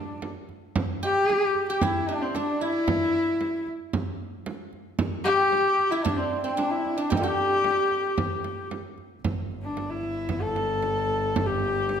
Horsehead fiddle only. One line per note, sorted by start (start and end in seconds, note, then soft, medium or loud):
0.00 0.24 D4 medium
1.04 1.65 G4 loud
1.69 1.84 G4 medium
1.82 2.10 E4 medium
2.09 2.23 D4 medium
2.22 2.36 C4 medium
2.35 2.63 D4 medium
2.61 3.67 E4 loud
5.24 5.92 G4 loud
5.91 6.05 E4 medium
6.04 6.18 D4 medium
6.17 6.43 C4 medium
6.43 6.56 C4 medium
6.56 6.72 D4 medium
6.70 6.99 E4 medium
6.97 7.11 D4 medium
7.10 8.70 G4 medium
9.63 9.91 D4 medium
9.90 10.43 E4 medium
10.42 11.48 A4 medium
11.46 12.00 G4 medium